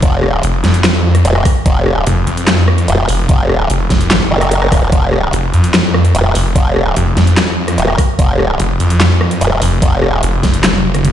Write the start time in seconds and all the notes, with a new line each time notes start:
0.02 F1, kick, closed hi-hat
0.23 cross-stick
0.43 F1, closed hi-hat
0.64 F2, snare, closed hi-hat
0.74 closed hi-hat
0.84 snare, clap, closed hi-hat
1.15 cross-stick, closed hi-hat
1.25 D#1, closed hi-hat
1.35 cross-stick
1.45 kick, cross-stick, open hi-hat
1.66 F1, kick, closed hi-hat
1.86 cross-stick
2.07 F1, closed hi-hat
2.27 F2, closed hi-hat
2.37 closed hi-hat
2.47 snare, clap, closed hi-hat
2.68 cross-stick
2.78 closed hi-hat
2.88 D#1, closed hi-hat
3.09 F1, open hi-hat
3.29 F1, kick, closed hi-hat
3.49 cross-stick
3.70 F1, closed hi-hat
3.90 F1, kick, snare, closed hi-hat
4.01 closed hi-hat
4.11 G#1, snare, clap, closed hi-hat
4.31 F#1
4.41 cross-stick, closed hi-hat
4.51 closed hi-hat
4.62 cross-stick
4.72 D#1, kick, cross-stick, open hi-hat
4.92 F1, kick, closed hi-hat
5.13 cross-stick
5.33 F1, closed hi-hat
5.54 F2, closed hi-hat
5.64 closed hi-hat
5.74 snare, clap, closed hi-hat
5.94 cross-stick
6.05 closed hi-hat
6.15 D#1, closed hi-hat
6.35 F1, open hi-hat
6.56 F1, kick, closed hi-hat
6.76 cross-stick
6.96 F1, closed hi-hat
7.17 F2, snare, closed hi-hat
7.27 closed hi-hat
7.37 snare, clap, closed hi-hat
7.68 cross-stick, closed hi-hat
7.78 D#1, closed hi-hat
7.88 cross-stick
7.98 kick, cross-stick, open hi-hat
8.19 F1, kick, closed hi-hat
8.39 cross-stick
8.60 F1, closed hi-hat
8.80 F2, closed hi-hat
8.90 closed hi-hat
9.00 snare, clap, closed hi-hat
9.21 cross-stick
9.31 closed hi-hat
9.41 D#1, closed hi-hat
9.62 F1, open hi-hat
9.82 F1, kick, closed hi-hat
10.02 cross-stick
10.23 F1, closed hi-hat
10.43 F1, kick, snare, closed hi-hat
10.54 closed hi-hat
10.64 snare, clap, closed hi-hat, high tom
10.74 high tom
10.94 cross-stick, closed hi-hat, mid tom
11.05 closed hi-hat, mid tom